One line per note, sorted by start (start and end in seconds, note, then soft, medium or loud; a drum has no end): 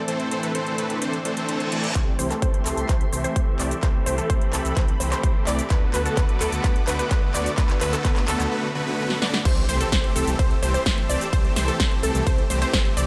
0.00 1.91 A3 medium
0.00 1.92 C5 medium
0.08 0.28 E3 medium
0.08 0.28 A3 medium
0.08 0.28 C4 medium
0.08 1.93 D4 medium
0.08 0.28 A4 medium
0.08 0.28 C5 medium
0.08 closed hi-hat medium
0.20 closed hi-hat soft
0.31 0.40 E3 medium
0.31 0.40 A3 medium
0.31 0.40 C4 medium
0.31 0.40 A4 medium
0.31 0.40 C5 medium
0.31 closed hi-hat medium
0.43 0.52 E3 medium
0.43 0.52 A3 medium
0.43 0.52 C4 medium
0.43 0.52 A4 medium
0.43 0.52 B4 medium
0.43 closed hi-hat soft
0.55 0.75 E3 medium
0.55 0.75 A3 medium
0.55 0.75 C4 medium
0.55 0.75 A4 medium
0.55 0.75 C5 medium
0.55 closed hi-hat medium
0.67 closed hi-hat soft
0.78 0.99 E3 medium
0.78 0.99 A3 medium
0.78 0.99 C4 medium
0.78 0.99 A4 medium
0.78 0.99 B4 medium
0.78 closed hi-hat medium
0.90 closed hi-hat soft
1.02 1.18 E3 medium
1.02 1.18 A3 medium
1.02 1.18 C4 medium
1.02 1.18 A4 medium
1.02 1.18 C5 medium
1.02 closed hi-hat medium
1.02 reverse cymbal medium
1.13 closed hi-hat soft
1.25 1.34 E3 medium
1.25 1.34 A3 medium
1.25 1.34 C4 medium
1.25 1.34 A4 medium
1.25 1.34 C5 medium
1.25 closed hi-hat medium
1.37 1.47 E3 medium
1.37 1.47 A3 medium
1.37 1.47 C4 medium
1.37 1.47 A4 medium
1.37 1.47 C5 medium
1.37 closed hi-hat soft
1.48 1.69 E3 medium
1.48 1.69 A3 medium
1.48 1.69 C4 medium
1.48 1.69 A4 medium
1.48 1.69 C5 medium
1.48 closed hi-hat medium
1.60 closed hi-hat soft
1.72 1.88 E3 medium
1.72 1.88 A3 medium
1.72 1.88 C4 medium
1.72 1.88 A4 medium
1.72 1.88 D5 medium
1.72 closed hi-hat medium
1.84 closed hi-hat soft
1.95 2.10 C2 medium
1.95 2.16 E3 medium
1.95 2.16 A3 medium
1.95 2.16 C4 medium
1.95 2.16 G4 medium
1.95 5.67 A4 medium
1.95 2.16 C5 medium
1.95 5.67 E5 medium
1.95 3.81 C6 medium
1.95 kick loud
1.95 clap soft
1.95 closed hi-hat medium
1.95 riser medium
1.95 shaker soft
2.19 2.33 C2 medium
2.19 2.28 E3 medium
2.19 2.28 A3 medium
2.19 2.28 C4 medium
2.19 2.28 G4 medium
2.19 2.28 C5 medium
2.19 open hi-hat medium
2.19 shaker medium
2.30 2.39 E3 medium
2.30 2.39 A3 medium
2.30 2.39 C4 medium
2.30 2.39 G4 medium
2.30 2.39 A4 medium
2.30 clap soft
2.30 closed hi-hat medium
2.30 shaker soft
2.42 2.49 C2 medium
2.42 2.63 E3 medium
2.42 2.63 A3 medium
2.42 2.63 C4 medium
2.42 2.63 G4 medium
2.42 2.63 C5 loud
2.42 kick loud
2.42 closed hi-hat medium
2.42 shaker soft
2.54 closed hi-hat soft
2.66 2.73 C2 medium
2.66 2.86 E3 medium
2.66 2.86 A3 medium
2.66 2.86 C4 medium
2.66 2.86 G4 medium
2.66 2.86 A4 medium
2.66 clap soft
2.66 open hi-hat loud
2.66 shaker medium
2.77 2.85 C2 loud
2.77 closed hi-hat medium
2.77 shaker soft
2.89 3.03 C2 medium
2.89 3.05 E3 medium
2.89 3.05 A3 medium
2.89 3.05 C5 medium
2.89 kick loud
2.89 clap medium
2.89 closed hi-hat medium
2.89 shaker soft
3.01 closed hi-hat soft
3.12 3.27 C2 medium
3.12 3.21 E3 medium
3.12 3.21 A3 medium
3.12 3.21 C4 medium
3.12 3.21 G4 medium
3.12 3.21 C5 medium
3.12 open hi-hat loud
3.12 shaker medium
3.24 3.34 E3 medium
3.24 3.34 A3 medium
3.24 3.34 C4 medium
3.24 3.34 G4 medium
3.24 3.34 C5 medium
3.24 closed hi-hat medium
3.24 shaker soft
3.36 3.43 C2 medium
3.36 3.57 E3 medium
3.36 3.57 A3 medium
3.36 3.57 C4 medium
3.36 3.57 C5 medium
3.36 kick loud
3.36 closed hi-hat medium
3.36 shaker soft
3.59 3.74 C2 loud
3.59 3.75 E3 medium
3.59 3.76 A3 medium
3.59 3.75 C4 medium
3.59 3.75 G4 medium
3.59 3.75 D5 medium
3.59 clap medium
3.59 open hi-hat loud
3.59 shaker medium
3.71 closed hi-hat soft
3.71 shaker soft
3.83 3.97 C2 loud
3.83 4.03 E3 medium
3.83 4.03 A3 medium
3.83 4.03 C4 medium
3.83 4.03 G4 medium
3.83 4.03 C5 medium
3.83 5.68 B5 medium
3.83 kick loud
3.83 clap medium
3.83 closed hi-hat medium
3.83 shaker soft
4.06 4.21 C2 medium
4.06 4.15 E3 medium
4.06 4.15 A3 medium
4.06 4.15 C4 medium
4.06 4.15 G4 medium
4.06 4.15 C5 loud
4.06 4.15 C5 medium
4.06 open hi-hat loud
4.06 shaker medium
4.18 4.27 E3 medium
4.18 4.27 A3 medium
4.18 4.27 C4 medium
4.18 4.27 G4 medium
4.18 4.27 A4 medium
4.18 closed hi-hat soft
4.18 shaker soft
4.30 4.37 C2 loud
4.30 4.50 E3 medium
4.30 4.50 A3 medium
4.30 4.50 C4 medium
4.30 4.50 G4 medium
4.30 4.50 C5 loud
4.30 4.50 C5 medium
4.30 kick loud
4.30 closed hi-hat medium
4.30 shaker soft
4.42 closed hi-hat soft
4.53 4.60 C2 medium
4.53 4.74 E3 medium
4.53 4.74 A3 medium
4.53 4.74 C4 medium
4.53 4.74 G4 medium
4.53 4.74 A4 medium
4.53 clap medium
4.53 open hi-hat loud
4.53 shaker medium
4.65 4.72 C2 loud
4.65 closed hi-hat soft
4.65 shaker soft
4.77 4.91 C2 medium
4.77 4.93 E3 medium
4.77 4.93 A3 medium
4.77 4.93 C4 medium
4.77 4.93 G4 medium
4.77 4.93 C5 medium
4.77 kick loud
4.77 clap medium
4.77 closed hi-hat medium
4.77 shaker soft
4.88 closed hi-hat soft
5.00 5.14 C2 medium
5.00 5.09 E3 medium
5.00 5.09 A3 medium
5.00 5.09 C4 medium
5.00 5.09 G4 medium
5.00 5.09 C5 medium
5.00 open hi-hat loud
5.00 shaker medium
5.12 5.22 E3 medium
5.12 5.22 A3 medium
5.12 5.22 C4 medium
5.12 5.22 G4 medium
5.12 5.22 C5 medium
5.12 clap medium
5.12 closed hi-hat medium
5.12 shaker soft
5.23 5.31 C2 medium
5.23 5.44 A3 medium
5.23 5.44 C4 medium
5.23 5.44 G4 medium
5.23 5.44 C5 medium
5.23 kick loud
5.23 closed hi-hat medium
5.23 shaker soft
5.47 5.61 C2 loud
5.47 5.63 E3 medium
5.47 5.63 A3 medium
5.47 5.63 C4 medium
5.47 5.63 G4 medium
5.47 5.63 D5 medium
5.47 clap medium
5.47 open hi-hat loud
5.47 shaker medium
5.59 closed hi-hat soft
5.59 shaker soft
5.70 5.85 D2 medium
5.70 5.91 D3 medium
5.70 5.91 B3 medium
5.70 5.91 F#4 medium
5.70 5.91 B4 medium
5.70 8.49 B4 medium
5.70 8.49 F#5 medium
5.70 7.56 D6 medium
5.70 kick loud
5.70 clap medium
5.70 closed hi-hat medium
5.70 shaker soft
5.94 6.08 D2 medium
5.94 6.03 D3 medium
5.94 6.03 A3 medium
5.94 6.03 B3 medium
5.94 6.03 F#4 medium
5.94 6.03 B4 medium
5.94 6.03 B4 loud
5.94 clap medium
5.94 open hi-hat loud
5.94 shaker medium
6.05 6.14 D3 medium
6.05 6.14 A3 medium
6.05 6.14 B3 medium
6.05 6.14 F#4 medium
6.05 6.14 A4 medium
6.05 closed hi-hat soft
6.05 shaker soft
6.17 6.24 D2 loud
6.17 6.38 D3 medium
6.17 6.38 B3 medium
6.17 6.38 F#4 medium
6.17 6.38 B4 loud
6.17 kick loud
6.17 clap medium
6.17 closed hi-hat medium
6.17 shaker soft
6.29 closed hi-hat soft
6.41 6.48 D2 medium
6.41 6.61 D3 medium
6.41 6.61 A3 medium
6.41 6.61 B3 medium
6.41 6.61 F#4 medium
6.41 6.61 A4 medium
6.41 clap medium
6.41 open hi-hat loud
6.41 shaker medium
6.52 6.59 D2 loud
6.52 closed hi-hat soft
6.52 shaker soft
6.64 6.78 D2 medium
6.64 6.80 D3 medium
6.64 6.80 A3 medium
6.64 6.80 B3 medium
6.64 6.80 F#4 medium
6.64 6.80 B4 medium
6.64 kick loud
6.64 clap medium
6.64 closed hi-hat medium
6.64 shaker soft
6.76 closed hi-hat soft
6.87 7.02 D2 medium
6.87 6.96 D3 medium
6.87 6.96 A3 medium
6.87 6.96 B3 medium
6.87 6.96 F#4 medium
6.87 6.96 B4 medium
6.87 clap medium
6.87 open hi-hat loud
6.87 shaker medium
6.99 7.09 D3 medium
6.99 7.09 A3 medium
6.99 7.09 B3 medium
6.99 7.09 F#4 medium
6.99 7.09 B4 medium
6.99 closed hi-hat medium
6.99 shaker soft
7.11 7.18 D2 medium
7.11 7.32 D3 medium
7.11 7.32 A3 medium
7.11 7.32 B3 medium
7.11 7.32 F#4 medium
7.11 7.32 B4 medium
7.11 kick loud
7.11 clap medium
7.11 closed hi-hat medium
7.11 shaker soft
7.34 7.49 D2 loud
7.34 7.50 D3 medium
7.34 7.50 A3 medium
7.34 7.50 B3 medium
7.34 7.50 F#4 medium
7.34 7.50 D5 medium
7.34 clap medium
7.34 open hi-hat loud
7.34 shaker medium
7.46 closed hi-hat soft
7.46 shaker soft
7.58 7.72 D2 loud
7.58 7.78 D3 medium
7.58 7.78 A3 medium
7.58 7.78 B3 medium
7.58 7.78 B4 medium
7.58 8.51 E6 medium
7.58 kick loud
7.58 clap medium
7.58 closed hi-hat medium
7.58 shaker soft
7.70 clap medium
7.70 closed hi-hat soft
7.81 7.95 D2 loud
7.81 7.90 D3 medium
7.81 7.90 A3 medium
7.81 7.90 B3 medium
7.81 7.90 F#4 medium
7.81 7.90 B4 loud
7.81 clap medium
7.81 open hi-hat loud
7.81 shaker medium
7.93 8.02 D3 medium
7.93 8.02 A3 medium
7.93 8.02 B3 medium
7.93 8.02 F#4 medium
7.93 8.02 A4 medium
7.93 clap medium
7.93 closed hi-hat medium
7.93 shaker soft
8.05 8.12 D2 loud
8.05 8.25 D3 medium
8.05 8.25 A3 medium
8.05 8.25 B3 medium
8.05 8.25 B4 loud
8.05 kick loud
8.05 clap medium
8.05 closed hi-hat medium
8.05 shaker soft
8.16 clap medium
8.16 closed hi-hat soft
8.28 8.35 D2 medium
8.28 8.49 D3 medium
8.28 8.49 A3 medium
8.28 8.49 B3 medium
8.28 8.49 F#4 medium
8.28 8.49 A4 medium
8.28 clap loud
8.28 open hi-hat loud
8.28 shaker medium
8.40 8.47 D2 loud
8.40 clap medium
8.40 closed hi-hat soft
8.40 shaker soft
8.52 8.68 D3 medium
8.52 8.68 A3 medium
8.52 8.68 B3 medium
8.52 8.68 F#4 medium
8.52 8.68 B4 medium
8.75 8.84 D3 medium
8.75 8.84 A3 medium
8.75 8.84 B3 medium
8.75 8.84 F#4 medium
8.75 8.84 B4 medium
8.87 8.97 D3 medium
8.87 8.97 A3 medium
8.87 8.97 B3 medium
8.87 8.97 F#4 medium
8.87 8.97 B4 medium
8.98 9.19 D3 medium
8.98 9.19 A3 medium
8.98 9.19 B3 medium
8.98 9.19 F#4 medium
8.98 9.19 B4 medium
9.10 snare medium
9.22 9.38 D3 medium
9.22 9.38 A3 medium
9.22 9.38 B3 medium
9.22 9.38 F#4 medium
9.22 9.38 D5 medium
9.22 snare medium
9.34 snare medium
9.45 9.60 C2 loud
9.45 9.66 E3 medium
9.45 9.66 A3 medium
9.45 9.66 C4 medium
9.45 9.66 G4 medium
9.45 9.66 C5 medium
9.45 13.07 C5 medium
9.45 9.66 C5 medium
9.45 13.07 A5 medium
9.45 13.07 E6 loud
9.45 kick loud
9.45 closed hi-hat medium
9.45 crash loud
9.45 ride medium
9.45 sub drop medium
9.45 shaker soft
9.57 closed hi-hat soft
9.69 9.83 C2 medium
9.69 9.78 E3 medium
9.69 9.78 A3 medium
9.69 9.78 C4 medium
9.69 9.78 G4 medium
9.69 9.78 C5 loud
9.69 open hi-hat loud
9.69 shaker medium
9.80 9.89 E3 medium
9.80 9.89 A3 medium
9.80 9.89 C4 medium
9.80 9.89 G4 medium
9.80 9.89 A4 medium
9.80 closed hi-hat medium
9.80 shaker soft
9.92 9.99 C2 loud
9.92 10.13 E3 medium
9.92 10.13 A3 medium
9.92 10.13 G4 medium
9.92 10.13 C5 loud
9.92 kick loud
9.92 snare loud
9.92 closed hi-hat medium
9.92 ride medium
9.92 shaker soft
10.04 closed hi-hat soft
10.16 10.23 C2 medium
10.16 10.36 E3 medium
10.16 10.36 A3 medium
10.16 10.36 C4 medium
10.16 10.36 G4 medium
10.16 10.36 A4 medium
10.16 open hi-hat loud
10.16 shaker medium
10.27 10.35 C2 loud
10.27 closed hi-hat medium
10.27 shaker soft
10.39 10.53 C2 medium
10.39 10.55 E3 medium
10.39 10.55 C4 medium
10.39 10.55 C5 medium
10.39 kick loud
10.39 closed hi-hat medium
10.39 ride medium
10.39 shaker soft
10.51 closed hi-hat soft
10.62 10.77 C2 loud
10.62 10.71 E3 medium
10.62 10.71 A3 medium
10.62 10.71 C4 medium
10.62 10.71 G4 medium
10.62 10.71 C5 medium
10.62 open hi-hat loud
10.62 shaker medium
10.74 10.84 E3 medium
10.74 10.84 A3 medium
10.74 10.84 C4 medium
10.74 10.84 G4 medium
10.74 10.84 C5 medium
10.74 closed hi-hat medium
10.74 shaker soft
10.86 11.00 G1 medium
10.86 11.07 E3 medium
10.86 11.07 A3 medium
10.86 11.07 C5 medium
10.86 kick loud
10.86 snare loud
10.86 closed hi-hat medium
10.86 ride medium
10.86 shaker soft
10.98 closed hi-hat soft
11.09 11.17 C2 loud
11.09 11.26 E3 medium
11.09 11.26 A3 medium
11.09 11.26 C4 medium
11.09 11.26 G4 medium
11.09 11.26 D5 medium
11.09 open hi-hat loud
11.09 shaker medium
11.21 closed hi-hat medium
11.21 shaker soft
11.33 11.47 C2 loud
11.33 11.53 E3 medium
11.33 11.53 A3 medium
11.33 11.53 C4 medium
11.33 11.53 G4 medium
11.33 11.53 C5 medium
11.33 kick loud
11.33 closed hi-hat medium
11.33 ride medium
11.33 shaker soft
11.45 closed hi-hat soft
11.56 11.71 C2 loud
11.56 11.65 E3 medium
11.56 11.65 A3 medium
11.56 11.65 C4 medium
11.56 11.65 G4 medium
11.56 11.65 C5 loud
11.56 snare medium
11.56 open hi-hat loud
11.56 shaker medium
11.68 11.77 E3 medium
11.68 11.77 A3 medium
11.68 11.77 C4 medium
11.68 11.77 G4 medium
11.68 11.77 A4 medium
11.68 closed hi-hat medium
11.68 shaker soft
11.80 11.87 C2 loud
11.80 12.00 E3 medium
11.80 12.00 A3 medium
11.80 12.00 C4 medium
11.80 12.00 G4 medium
11.80 12.00 C5 loud
11.80 kick loud
11.80 snare loud
11.80 closed hi-hat medium
11.80 ride medium
11.80 shaker soft
11.92 closed hi-hat soft
12.03 12.10 C2 medium
12.03 12.24 E3 medium
12.03 12.24 A3 medium
12.03 12.24 C4 medium
12.03 12.24 G4 medium
12.03 12.24 A4 medium
12.03 open hi-hat loud
12.03 shaker medium
12.15 12.22 C2 loud
12.15 closed hi-hat medium
12.15 shaker soft
12.27 12.41 C2 medium
12.27 12.43 E3 medium
12.27 12.43 A3 medium
12.27 12.43 C4 medium
12.27 12.43 G4 medium
12.27 12.43 C5 medium
12.27 kick loud
12.27 closed hi-hat medium
12.27 ride medium
12.27 shaker soft
12.38 closed hi-hat soft
12.50 12.64 C2 medium
12.50 12.59 E3 medium
12.50 12.59 A3 medium
12.50 12.59 C4 medium
12.50 12.59 G4 medium
12.50 12.59 C5 medium
12.50 open hi-hat loud
12.50 shaker medium
12.62 12.72 E3 medium
12.62 12.72 A3 medium
12.62 12.72 C4 medium
12.62 12.72 G4 medium
12.62 12.72 C5 medium
12.62 closed hi-hat medium
12.62 shaker soft
12.73 12.88 G1 medium
12.73 12.94 E3 medium
12.73 12.94 C4 medium
12.73 12.94 C5 medium
12.73 kick loud
12.73 snare loud
12.73 closed hi-hat medium
12.73 ride medium
12.73 shaker soft
12.85 closed hi-hat soft
12.97 13.04 C2 loud
12.97 13.07 E3 medium
12.97 13.07 A3 medium
12.97 13.07 C4 medium
12.97 13.07 G4 medium
12.97 13.07 D5 medium
12.97 open hi-hat loud
12.97 shaker medium